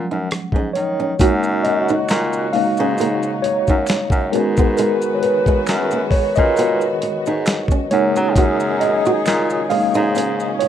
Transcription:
0.00 1.21 F3 medium
0.00 1.21 F#3 soft
0.00 1.19 G#3 soft
0.00 1.21 C#4 soft
0.00 0.70 F#5 medium
0.11 0.28 F#2 medium
0.11 0.24 D#4 medium
0.31 0.41 G#2 soft
0.31 cross-stick loud
0.31 closed hi-hat medium
0.52 0.71 G#2 medium
0.52 0.69 C#4 medium
0.52 kick medium
0.73 1.14 D#3 medium
0.73 1.66 C#5 medium
0.73 muted nylon-string guitar stroke soft
0.73 closed hi-hat medium
1.00 1.13 C#4 medium
1.19 1.96 F#2 loud
1.19 4.29 C#3 medium
1.19 3.84 D#3 medium
1.19 4.29 F#3 medium
1.19 2.52 G#3 soft
1.19 2.52 A#3 soft
1.19 3.84 C#4 medium
1.19 4.29 D#4 medium
1.19 2.53 D#4 medium
1.19 3.84 F#4 medium
1.19 1.36 F#4 medium
1.19 kick loud
1.19 closed hi-hat medium
1.19 maracas medium
1.43 maracas soft
1.63 2.49 D#5 loud
1.63 muted nylon-string guitar stroke soft
1.63 closed hi-hat medium
1.89 2.03 D#4 medium
1.89 maracas soft
2.09 2.48 A#2 loud
2.09 finger snap medium
2.09 muted nylon-string guitar stroke soft
2.09 snare loud
2.09 closed hi-hat medium
2.09 maracas medium
2.33 maracas soft
2.53 2.94 G#3 soft
2.53 2.94 A#3 soft
2.53 2.71 C#4 medium
2.53 2.95 D#4 soft
2.53 3.39 F5 medium
2.53 open hi-hat soft
2.77 3.34 G#2 medium
2.77 2.93 C#4 medium
2.77 maracas medium
2.98 3.15 A#3 medium
2.98 closed hi-hat medium
2.98 maracas medium
3.23 maracas soft
3.42 3.54 F#2 soft
3.42 4.35 C#5 medium
3.42 muted nylon-string guitar stroke soft
3.42 closed hi-hat medium
3.67 3.86 F#2 medium
3.67 3.82 D#4 medium
3.67 kick medium
3.67 maracas medium
3.87 3.99 F#2 soft
3.87 finger snap medium
3.87 snare loud
3.87 closed hi-hat medium
3.87 maracas medium
3.91 muted nylon-string guitar stroke soft
4.10 4.36 F#2 medium
4.10 kick medium
4.10 maracas medium
4.32 5.10 G#2 medium
4.32 7.87 D#3 medium
4.32 7.42 D#3 medium
4.32 7.87 G#3 medium
4.32 4.94 G#3 medium
4.32 4.94 B3 soft
4.32 4.50 C#4 medium
4.32 7.87 F#4 medium
4.32 4.94 F#4 medium
4.32 7.42 G#4 medium
4.32 4.76 A#4 medium
4.32 7.42 B4 medium
4.32 closed hi-hat medium
4.57 4.72 B3 medium
4.57 kick loud
4.57 maracas medium
4.77 4.94 G#3 medium
4.77 5.17 A#4 medium
4.77 closed hi-hat medium
4.77 maracas medium
5.02 maracas medium
5.15 5.22 C#5 medium
5.21 6.07 B4 medium
5.21 muted nylon-string guitar stroke soft
5.21 closed hi-hat medium
5.46 5.61 G#3 medium
5.46 kick medium
5.46 maracas soft
5.67 6.06 F#2 medium
5.67 finger snap medium
5.67 snare loud
5.67 closed hi-hat medium
5.67 maracas medium
5.91 6.06 A#3 medium
5.91 maracas soft
6.11 6.36 C#5 medium
6.11 muted nylon-string guitar stroke soft
6.11 kick medium
6.11 open hi-hat soft
6.36 6.93 A#2 medium
6.36 6.51 C#4 medium
6.36 7.95 D#5 medium
6.36 kick medium
6.36 maracas soft
6.57 6.74 B3 medium
6.57 6.98 F#4 medium
6.57 6.97 A#4 soft
6.57 6.97 B4 soft
6.57 closed hi-hat medium
6.57 maracas medium
6.81 maracas soft
7.02 7.12 G#2 soft
7.02 muted nylon-string guitar stroke soft
7.02 closed hi-hat medium
7.26 7.64 G#2 medium
7.26 7.40 D#4 medium
7.26 maracas medium
7.46 finger snap medium
7.46 snare loud
7.46 closed hi-hat medium
7.46 maracas medium
7.68 7.85 C#4 medium
7.68 kick medium
7.68 maracas soft
7.91 8.12 F#2 medium
7.91 10.68 C#3 medium
7.91 10.68 D#3 medium
7.91 10.68 F#3 medium
7.91 9.69 G#3 medium
7.91 9.69 A#3 medium
7.91 10.68 C#4 medium
7.91 9.68 D#4 medium
7.91 9.70 D#4 medium
7.91 10.68 G#4 medium
7.91 8.83 C#5 medium
7.91 muted nylon-string guitar stroke soft
7.91 closed hi-hat medium
8.16 8.38 F#3 loud
8.16 8.29 C#4 medium
8.16 maracas medium
8.36 9.12 F#2 loud
8.36 8.53 F#4 medium
8.36 kick loud
8.36 closed hi-hat medium
8.36 maracas medium
8.60 maracas medium
8.80 9.66 D#5 loud
8.80 muted nylon-string guitar stroke soft
8.80 closed hi-hat medium
9.05 9.19 F#4 medium
9.05 maracas soft
9.26 9.64 A#2 loud
9.26 finger snap medium
9.26 muted nylon-string guitar stroke soft
9.26 snare loud
9.26 closed hi-hat medium
9.26 maracas medium
9.50 maracas soft
9.70 10.11 G#3 soft
9.70 10.11 A#3 soft
9.70 10.68 C#4 medium
9.70 10.11 D#4 medium
9.70 9.87 D#4 medium
9.70 10.62 F5 loud
9.70 open hi-hat soft
9.94 10.51 G#2 medium
9.94 10.08 D#4 medium
9.94 maracas medium
10.15 10.32 C#4 medium
10.15 closed hi-hat medium
10.15 maracas medium
10.40 maracas soft
10.59 10.68 F#2 soft
10.59 10.68 C#5 loud
10.59 muted nylon-string guitar stroke soft
10.59 closed hi-hat medium

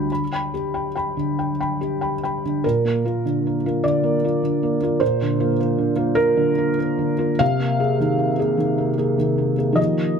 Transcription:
0.00 0.23 D3 soft
0.00 2.64 G3 soft
0.00 0.12 G4 soft
0.00 0.12 G5 soft
0.00 0.12 B5 soft
0.12 0.32 B5 soft
0.33 0.51 G5 soft
0.33 0.52 B5 soft
0.54 0.87 G4 soft
0.74 0.93 G5 soft
0.74 0.93 B5 soft
0.95 1.14 G5 soft
0.95 1.15 B5 soft
1.17 1.50 D3 soft
1.39 1.59 G5 soft
1.60 1.79 G5 soft
1.60 1.79 B5 soft
1.81 2.14 G4 soft
2.01 2.20 G5 soft
2.01 2.20 B5 soft
2.23 2.42 G5 soft
2.23 2.42 B5 soft
2.45 2.64 D3 soft
2.64 4.98 A#2 soft
2.64 3.84 A#4 medium
2.85 3.03 A#3 soft
3.05 3.22 A#3 soft
3.05 3.23 F4 soft
3.25 3.56 D3 soft
3.47 3.65 A#3 soft
3.66 3.83 A#3 soft
3.66 3.83 F4 soft
3.84 4.16 D3 soft
3.84 5.01 D5 medium
4.04 4.23 A#3 soft
4.24 4.41 A#3 soft
4.24 4.42 F4 soft
4.43 4.74 D3 soft
4.63 4.80 A#3 soft
4.82 4.99 A#3 soft
4.82 5.00 F4 soft
5.00 7.36 A#2 medium
5.00 6.18 C5 medium
5.22 5.52 D3 soft
5.40 5.57 A#3 soft
5.40 5.58 F4 medium
5.60 5.91 A#3 soft
5.78 6.10 D3 soft
5.96 6.15 A#3 soft
5.96 6.15 F4 soft
6.15 6.50 A#3 soft
6.15 7.39 A#4 medium
6.37 6.70 D3 medium
6.58 6.76 A#3 soft
6.58 6.77 F4 soft
6.79 7.12 A#3 soft
6.99 7.32 D3 soft
7.18 7.37 A#3 soft
7.18 7.38 F4 soft
7.39 9.74 C3 medium
7.39 9.77 F5 loud
7.60 7.79 A#3 soft
7.80 7.98 A#3 soft
7.80 7.98 G#4 soft
8.00 8.31 D#3 soft
8.19 8.37 A#3 soft
8.38 8.56 A#3 soft
8.38 8.57 G#4 soft
8.57 8.89 D#3 soft
8.78 8.96 A#3 soft
8.98 9.15 A#3 soft
8.98 9.16 G#4 soft
9.18 9.50 D#3 soft
9.38 9.56 A#3 soft
9.58 9.73 A#3 soft
9.58 9.76 G#4 soft
9.72 10.20 D#3 soft
9.72 10.20 F3 soft
9.72 10.20 A#3 soft
9.72 10.20 G4 soft
9.72 10.20 D#5 medium

